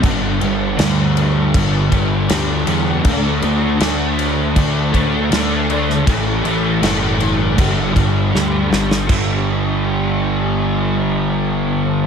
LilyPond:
<<
  \new Staff \with { instrumentName = "Distorted electric guitar" } { \clef bass \time 4/4 \key d \mixolydian \tempo 4 = 80 <g, d g>8 <d g>8 <g, d g>4. <d g>8 <g, d g>8 <d g>8 | <d a d'>8 <a d'>8 <d a d'>4. <a d'>8 <d a d'>8 <a d'>8 | <a, e a>8 <e a>8 <a, e a>4 <g, d g>8 <d g>8 <g, d g>8 <d g>8 | <g, d g>1 | }
  \new Staff \with { instrumentName = "Picked electric bass" } { \clef bass \time 4/4 \key d \mixolydian g,,8 g,,8 d,4 g,,8 g,,8 d,8 e,8 | d,8 d,8 d,4 d,4 d,4 | a,,8 a,,8 fis,,4 g,,8 g,,8 d,8 g,,8 | g,,1 | }
  \new DrumStaff \with { instrumentName = "Drums" } \drummode { \time 4/4 <cymc bd>8 cymc8 <cymc sn>8 cymc8 <cymc bd>8 <cymc bd>8 <cymc sn>8 cymc8 | <cymc bd>8 cymc8 <cymc sn>8 cymc8 <cymc bd>8 <cymc bd>8 <cymc sn>8 cymc16 sn16 | <cymc bd>8 cymc8 <cymc sn>8 cymc8 <cymc bd>8 <cymc bd>8 sn8 sn16 sn16 | <cymc bd>4 r4 r4 r4 | }
>>